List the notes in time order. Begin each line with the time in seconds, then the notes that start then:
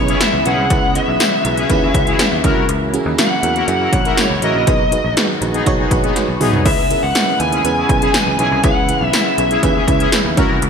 Already playing: B1 C#3 E3 G#3 B3 C#4 E4 G#4 B4 C#5
0.08 C#4 E4 G#4, closed hi-hat
0.20 C#4 E4 G#4 B4 E5, snare, closed hi-hat, tambourine
0.33 C#2
0.45 B1 C#4 E4 G#4 B4 F#5, closed hi-hat
0.58 C2
0.70 C#2 C#4 E4 F#4 G#4 B4, kick, closed hi-hat
0.95 C#4 E4 G#4 B4 E5, closed hi-hat
1.08 B1
1.20 C#4 E4 G#4 B4, snare, closed hi-hat, tambourine
1.45 B1 C#4 E4 G#4 B4, closed hi-hat
1.57 C#4 E4 G#4, closed hi-hat
1.69 D#2 C#4 E4 G#4 B4, kick, closed hi-hat
1.82 C#4 E4 G#4
1.94 C#2 C#4 E4 G#4 B4 F#5, kick, closed hi-hat
2.07 C#4 E4 G#4, closed hi-hat
2.19 C#4 E4 G#4 B4 G#5, snare, closed hi-hat, tambourine
2.32 D#2
2.44 C#2 F#3 A#3 C#4 E4 F#4 A#4 A#5, kick, closed hi-hat
2.56 C2
2.69 C#2, closed hi-hat
2.93 C#4 E4 F#4 G#4, closed hi-hat
3.06 D#2
3.18 C#4 E4 F#4 A#4 F#5, snare, closed hi-hat, tambourine
3.43 E2 C#4 E4 F#4 A#4, closed hi-hat
3.56 E4 F#4 A#4, closed hi-hat
3.68 F#2 C#4 E4 F#4 G#4 F#5, closed hi-hat
3.81 E4 F#4 A#4
3.92 A#1 C#4 E4 F#4 C#5, kick, closed hi-hat
4.05 E4 F#4 A#4, closed hi-hat
4.17 C#4 E4 F#4 A#4 C#5, snare, closed hi-hat, tambourine
4.30 C#2
4.42 A1 C#4 E4 F#4 A#4 D#5, closed hi-hat
4.55 A#1
4.67 B1 D#3 G#3 B3 D#4 F#4 G#4 B4, kick, closed hi-hat
4.92 D#4 F#4 G#4 B4, closed hi-hat
5.04 A#1
5.17 D#4 F#4 G#4 B4, snare, closed hi-hat, tambourine
5.41 A#1 D#4 F#4 G#4 B4, closed hi-hat
5.54 B3 D#4 G#4, closed hi-hat
5.66 B1 D#4 F#4 G#4 C#5, kick, closed hi-hat
5.79 B3 D#4 G#4
5.91 A#1 D#4 F#4 G#4 B4 G#5, kick, closed hi-hat
6.04 B3 D#4 G#4, closed hi-hat
6.16 D#4 F#4 G#4 B4 F#5, snare, closed hi-hat
6.28 B1
6.40 B1 B3 D#4 F#4 G#4 B4 E5, mid tom, open hi-hat
6.53 C2, floor tom
6.65 C#2 C#3 E3 C#4 E4 G#4 B4 E5, kick, crash
6.90 C#4 E4 G#4 A#4, closed hi-hat
7.03 C#2 F#5
7.15 C#4 E4 G#4 B4, snare, closed hi-hat, tambourine
7.40 D#2 C#4 E4 G#4 B4 G#5, closed hi-hat
7.52 C#4 E4 G#4, closed hi-hat
7.64 E2 C#4 E4 G#4 B4, closed hi-hat
7.77 C#4 E4 G#4
7.89 B1 C#4 E4 G#4 B4, kick, closed hi-hat
8.02 C#4 E4 G#4, closed hi-hat
8.14 C#4 E4 G#4 B4, snare, closed hi-hat, tambourine
8.27 C#2
8.39 B1 C#4 E4 G#4 B4 G#5, closed hi-hat
8.52 C2
8.63 C#2 C#4 E4 G#4 B4 F#5, kick, closed hi-hat
8.88 C#4 E4 G#4 B4, closed hi-hat
9.01 B1
9.13 C#4 E4 G#4 B4 E5, snare, closed hi-hat, tambourine
9.38 B1 C#4 E4 G#4 B4, closed hi-hat
9.51 C#4 E4 G#4, closed hi-hat
9.63 D#2 C#4 E4 G#4 B4, kick, closed hi-hat
9.76 C#4 E4 G#4
9.88 C#2 C#4 E4 G#4 B4, kick, closed hi-hat
10.00 C#4 E4 G#4, closed hi-hat
10.12 C#4 E4 G#4 B4, snare, closed hi-hat, tambourine
10.25 D#2
10.37 C#2 F#3 A#3 C#4 E4 F#4 A#4, kick, closed hi-hat
10.50 C2
10.62 C#2, closed hi-hat